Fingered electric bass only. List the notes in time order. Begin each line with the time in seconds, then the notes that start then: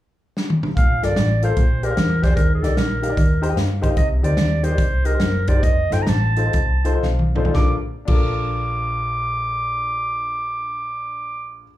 0.77 A#1
1.03 G1
1.17 A1
1.57 A#1
1.97 E2
2.37 D#2
2.63 C2
2.77 A#1
3.17 D#2
3.57 G2
3.84 C2
3.97 C2
4.23 D2
4.37 D#2
4.78 C2
5.20 F#1
5.63 F1
5.91 G1
6.07 A1
6.54 C2
7.03 B1
7.55 A#1
8.08 A#1